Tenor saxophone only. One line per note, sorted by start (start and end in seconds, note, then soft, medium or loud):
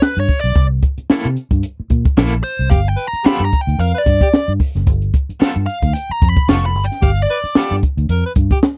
2.70 2.80 G4 loud
2.96 3.06 B4 medium
3.24 3.46 G4 loud
3.79 3.91 A#4 medium
3.95 4.02 B4 medium
4.22 4.29 G4 loud
7.02 7.11 G4 loud
7.30 7.39 B4 loud
7.58 7.78 G4 loud
8.11 8.22 A#4 loud
8.26 8.32 B4 medium
8.52 8.59 G4 loud